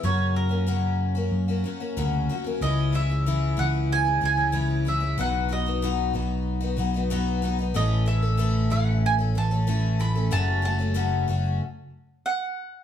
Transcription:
<<
  \new Staff \with { instrumentName = "Mandolin" } { \time 4/4 \key cis \minor \tempo 4 = 93 cis''8 ais'4 r2 r8 | dis''8 e''4 fis''8 gis''8 gis''4 e''8 | fis''8 dis''2 r4. | dis''8 e''4 fis''8 gis''8 a''4 b''8 |
a''8 a''2 r8 fis''4 | }
  \new Staff \with { instrumentName = "Twelve-string acoustic guitar" } { \time 4/4 \key cis \minor <fis, cis fis ais cis' fis'>8. <fis ais cis' fis'>16 <fis, cis fis ais cis' fis'>8. <fis ais cis' fis'>8 <fis ais cis' fis'>16 <fis ais cis' fis'>16 <fis ais cis' fis'>16 <fis, cis fis ais cis' fis'>8 <fis ais cis' fis'>16 <fis ais cis' fis'>16 | <cis e gis cis' e'>8 <e gis cis' e'>16 <gis cis' e'>16 <cis e gis cis' e'>8 <e gis cis' e'>8. <gis cis' e'>16 <e gis cis' e'>16 <gis cis' e'>16 <cis e gis cis' e'>8 <e gis cis' e'>16 <gis cis' e'>16 | <b, fis b dis' fis'>8 <fis b dis' fis'>16 <b dis' fis'>16 <b, fis b dis' fis'>8 <fis b dis' fis'>8. <b dis' fis'>16 <fis b dis' fis'>16 <b dis' fis'>16 <b, fis b dis' fis'>8 <fis b dis' fis'>16 <b dis' fis'>16 | <a, e a cis' a'>8 <e a cis' a'>16 <a cis' a'>16 <a, e a cis' a'>8 <e a cis' a'>8. <a cis' a'>16 <e a cis' a'>16 <a cis' a'>16 <a, e a cis' a'>8 <e a cis' a'>16 <a cis' a'>16 |
<fis, cis fis a cis' fis'>8 <fis a cis' fis'>16 <fis a cis' fis'>16 <fis, cis fis a cis' fis'>8 <fis a cis' fis'>8 r2 | }
  \new Staff \with { instrumentName = "Picked electric bass" } { \clef bass \time 4/4 \key cis \minor fis,2 fis,8 r8 d,8 r8 | cis,4. cis,4 cis,4. | b,,4. b,,4 b,,4. | a,,4. a,,4 a,,4. |
fis,,4. fis,,8 r2 | }
>>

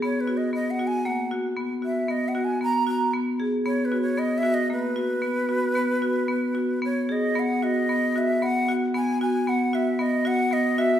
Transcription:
<<
  \new Staff \with { instrumentName = "Flute" } { \time 7/4 \key b \major \tempo 4 = 115 \tuplet 3/2 { cis''8 b'8 dis''8 dis''8 fis''8 gis''8 } fis''8 r4 e''8 \tuplet 3/2 { dis''8 fis''8 gis''8 } ais''8 ais''8 r4 | \tuplet 3/2 { cis''8 b'8 cis''8 dis''8 e''8 dis''8 } b'1 cis''8 dis''8 | fis''8 dis''4 e''8 fis''4 gis''8 gis''8 fis''8 e''8 dis''8 fis''8 dis''8 e''8 | }
  \new Staff \with { instrumentName = "Marimba" } { \time 7/4 \key b \major b8 fis'8 b8 fis'8 ais8 fis'8 b8 fis'8 b8 fis'8 b8 fis'8 b8 gis'8 | b8 fis'8 b8 fis'8 ais8 fis'8 b8 fis'8 b8 fis'8 b8 fis'8 b8 gis'8 | b8 fis'8 b8 fis'8 b8 fis'8 b8 fis'8 b8 fis'8 b8 fis'8 b8 fis'8 | }
>>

